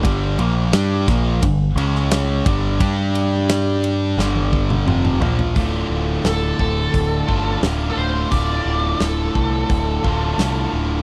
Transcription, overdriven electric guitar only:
\new Staff \with { instrumentName = "Overdriven electric guitar" } { \clef bass \time 4/4 \key d \minor \tempo 4 = 87 <g, d g>8 <bes, f bes>8 <g d' g'>8 <bes, f bes>8 <g, d>8 <cis gis cis'>4 <g, d g>8 | <g d' g'>2 <g, d g>4 <f, c f>8 <bes, f bes>8 | <d, a, d a f'>2~ <d, a, d a f'>8 <d, a, d a f'>8 <d, a, d a f'>4 | <d, a, d a f'>2~ <d, a, d a f'>8 <d, a, d a f'>8 <d, a, d a f'>4 | }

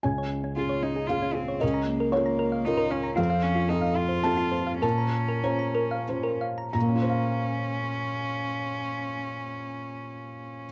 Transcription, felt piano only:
\new Staff \with { instrumentName = "Felt piano" } { \time 3/4 \key bes \minor \tempo 4 = 100 << { aes''2 f''4 | ees''4 des''2 | f''2 a''4 | a''4 bes''4 r4 |
<bes, bes des' f' c'' f'' bes''>2.~ | <bes, bes des' f' c'' f'' bes''>2. | } \\ { des,4 <des' f' aes'>4 <des' f' aes'>4 | des,4 <des' f' bes'>4 <des' f' bes'>4 | f,4 <c' f' a'>4 <c' f' a'>4 | bes,4 <des' f' c''>4 <des' f' c''>4 |
r2. | r2. | } >> }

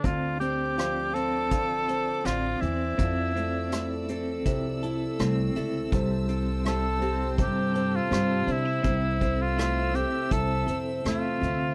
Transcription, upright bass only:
\new Staff \with { instrumentName = "Upright bass" } { \clef bass \time 4/4 \key d \dorian \tempo 4 = 82 d,2 a,,4 a,,8 e,8 | f,2 c,4 c,8 des,8 | c,2 g,4 g,8 c8 | c,2 c,8 f,8 e,8 d,8 | }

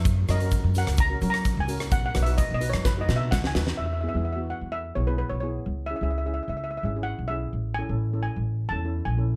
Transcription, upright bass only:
\new Staff \with { instrumentName = "Upright bass" } { \clef bass \time 4/4 \key e \major \tempo 4 = 128 fis,8 fis,8. fis,8 cis,8. fis8. cis,8. | b,,8 b,,8. b,,8 fis,8. b,8 cis,8 dis,8 | e,8. e,4 e,8. b,,8. b,,8. | cis,8. cis,4 cis,8. gis,,8. b,,8. |
a,,8. a,,4 a,,8. e,8. ais,,8. | }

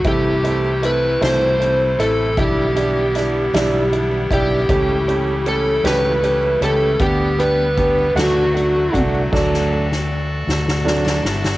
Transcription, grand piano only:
\new Staff \with { instrumentName = "Grand piano" } { \time 6/8 \key d \mixolydian \tempo 4. = 52 <a c' e'>8 <a c' e'>8 <a c' e'>8 <a c' e'>8 <a c' e'>8 <a c' e'>8 | <g d' e'>8 <g d' e'>8 <g d' e'>8 <g d' e'>8 <g d' e'>8 <g d' e'>8 | <a cis' g'>8 <a cis' g'>8 <a cis' g'>8 <a cis' g'>8 <a cis' g'>8 <a cis' g'>8 | <b d' g'>8 <b d' g'>8 <b d' g'>8 <a d' fis'>8 <a d' fis'>8 <a d' fis'>8 |
<fis a d'>8 r4. <fis a d'>8 r8 | }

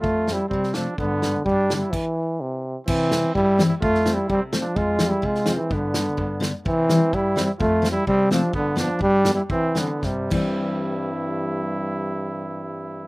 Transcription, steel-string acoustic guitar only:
\new Staff \with { instrumentName = "Steel-string acoustic guitar" } { \clef bass \time 2/4 \key c \major \tempo 4 = 127 << { r8 <f a c'>8 r8 <f a c'>8 | r8 <d g b>8 r8 <d g b>8 | r2 | r8 <e g c'>8 r8 <e g c'>8 |
r8 <f a c'>8 r8 <f a c'>8 | r8 <f aes c'>8 r8 <f aes c'>8 | r8 <d g b>8 r8 <d g b>8 | r8 <e g c'>8 r8 <e g c'>8 |
r8 <f a c'>8 r8 <f a c'>8 | r8 <d g b>8 r8 <d g b>8 | r8 <e g c'>8 r8 <e g c'>8~ | <e g c'>2~ |
<e g c'>2 | } \\ { f,4 c4 | g,4 g,4 | r2 | c4 g,4 |
f,4 c4 | f,4 c4 | g,4 g,4 | c4 g,4 |
f,4 c4 | g,4 g,4 | c4 g,8 r8 | r2 |
r2 | } >> }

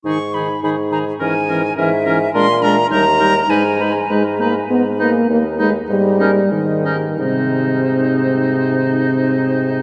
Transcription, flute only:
\new Staff \with { instrumentName = "Flute" } { \time 2/4 \key dis \phrygian \tempo 4 = 100 cis'''8 b''8 b''8 ais''8 | gis''4 e''4 | bis''8 ais''8 ais''4 | gis''4 r4 |
r8 b'16 r8. b'16 r16 | r8 ais'16 r8. ais'16 r16 | bis'2~ | bis'2 | }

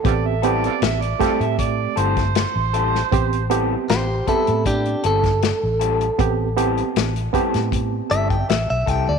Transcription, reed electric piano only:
\new Staff \with { instrumentName = "Reed electric piano" } { \time 4/4 \key a \minor \tempo 4 = 78 <b c' g'>8 <b c' g'>8 r8 <a c' g'>4. r4 | <b c' g'>8 <b c' g'>8 r8 <b c' g'>4. r4 | <b c' g'>8 <b c' g'>8 r8 <b c' g'>4. r4 | }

